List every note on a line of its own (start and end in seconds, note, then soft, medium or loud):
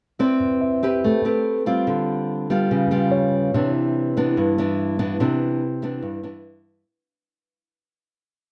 0.19 0.82 C4 medium
0.19 0.79 E4 soft
0.19 0.79 B4 medium
0.19 0.80 D5 medium
0.61 1.20 E5 soft
0.83 1.21 C4 medium
0.83 1.21 G4 medium
0.83 1.22 B4 medium
1.04 1.66 A3 medium
1.25 1.63 C4 soft
1.25 1.63 G4 medium
1.25 1.63 B4 medium
1.66 2.46 G3 medium
1.66 2.46 C4 medium
1.66 2.46 F4 medium
1.87 2.68 D3 medium
2.50 2.88 G3 medium
2.50 2.88 B3 medium
2.50 2.89 F4 medium
2.71 3.52 C#3 medium
2.91 3.50 G3 soft
2.91 3.50 B3 medium
2.91 3.50 F4 medium
3.11 3.70 C#5 soft
3.54 4.35 C3 medium
3.54 4.13 E3 medium
3.54 4.13 B3 medium
3.54 4.13 D4 medium
4.17 4.54 E3 medium
4.17 4.55 B3 medium
4.17 4.55 D4 medium
4.37 5.18 G2 medium
4.58 4.96 E3 medium
4.58 4.96 B3 medium
4.58 4.97 D4 medium
4.99 5.16 E3 medium
4.99 5.16 B3 medium
4.99 5.16 D4 medium
5.20 6.01 C3 medium
5.20 5.61 E3 medium
5.20 5.61 B3 medium
5.20 5.61 D4 medium
5.82 6.20 E3 medium
5.82 6.20 B3 medium
5.82 6.21 D4 medium
6.03 6.83 G2 medium
6.23 6.82 E3 soft
6.23 6.82 B3 soft
6.23 6.82 D4 medium